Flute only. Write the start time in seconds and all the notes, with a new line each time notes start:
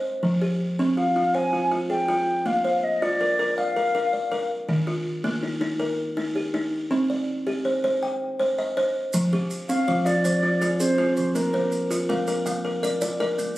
0.97 F5
1.35 G#5
1.90 G5
2.47 F5
2.84 D#5
3.02 D5
3.58 F5
9.69 F5
10.05 D5
10.79 C5
11.16 C5
11.35 A#4